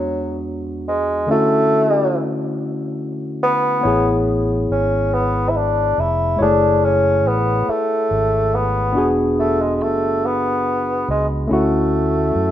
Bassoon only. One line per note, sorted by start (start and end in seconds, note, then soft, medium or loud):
0.00 0.44 F#3 medium
0.88 1.26 G#3 medium
1.31 2.21 A3 medium
3.43 4.23 B3 medium
4.72 5.15 C#4 medium
5.14 5.51 B3 medium
5.49 5.58 E4 medium
5.57 6.01 D4 medium
6.00 6.40 E4 medium
6.42 6.86 D4 medium
6.85 7.29 C#4 medium
7.27 7.71 B3 medium
7.69 8.56 A3 medium
8.55 9.11 B3 medium
9.39 9.63 A3 medium
9.62 9.75 G#3 medium
9.75 9.84 G#3 medium
9.83 10.27 A3 medium
10.25 11.09 B3 medium
11.10 11.26 G#3 medium
11.53 12.51 A3 medium